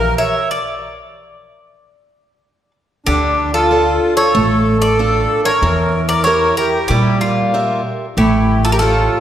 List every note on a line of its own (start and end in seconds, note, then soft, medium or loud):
0.00 0.12 A#1 medium
0.00 0.37 E3 soft
0.00 0.38 G4 soft
0.00 0.15 A#4 loud
0.00 0.38 A#4 soft
0.00 0.15 F5 loud
0.18 0.48 C#5 medium
0.18 0.51 E5 medium
0.51 2.71 D5 medium
3.06 3.96 D2 medium
3.06 3.69 D3 medium
3.06 3.51 D4 medium
3.06 3.54 G4 medium
3.53 4.14 F4 medium
3.53 4.14 A4 medium
3.71 4.22 D4 medium
3.71 4.22 F4 soft
3.71 4.22 A4 medium
4.16 4.77 A4 medium
4.16 4.81 C#5 medium
4.35 5.24 A1 medium
4.35 4.97 A3 medium
4.80 5.41 A4 medium
4.80 5.42 D5 loud
4.99 5.50 D4 medium
4.99 5.50 F4 soft
4.99 5.50 A4 soft
5.45 6.05 A#4 medium
5.45 6.08 C#5 medium
5.62 6.51 E2 medium
5.62 6.24 E3 medium
6.08 6.23 A#4 medium
6.08 6.23 D5 loud
6.24 6.77 E4 medium
6.24 6.77 G4 soft
6.24 6.55 A#4 medium
6.24 6.77 A#4 medium
6.24 6.54 C#5 loud
6.57 6.87 G4 medium
6.57 6.87 A#4 medium
6.88 7.79 A#2 medium
6.88 7.52 G3 medium
6.88 7.19 E4 medium
6.88 7.20 G4 medium
7.21 7.81 A#3 medium
7.21 7.81 F4 medium
7.54 8.05 G4 soft
7.54 8.05 A#4 medium
7.54 8.05 E5 soft
8.17 9.06 A1 medium
8.17 8.79 A3 medium
8.17 8.62 E4 medium
8.17 8.62 G4 medium
8.64 8.71 F4 medium
8.64 8.71 A4 medium
8.72 8.79 G4 medium
8.72 8.79 A#4 medium
8.78 9.20 F4 medium
8.78 9.20 G4 medium
8.78 9.20 A4 medium
8.78 9.20 A4 soft
8.82 9.20 C#5 medium